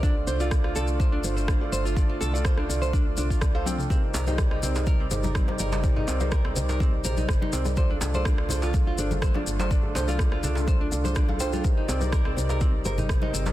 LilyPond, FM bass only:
\new Staff \with { instrumentName = "FM bass" } { \clef bass \time 4/4 \key d \phrygian \tempo 4 = 124 c,8 c,4 c,4 g,,4 g,,8~ | g,,8 c,4 c,4 c,4. | r8 c,4 c,4 g,,4 g,,8~ | g,,8 c,4 c,4 bes,,8 g,,8 c,8~ |
c,8 c,4 c,4 g,,4 g,,8~ | g,,8 c,4 c,4 c,4. | r8 c,4 c,4 g,,4 g,,8 | }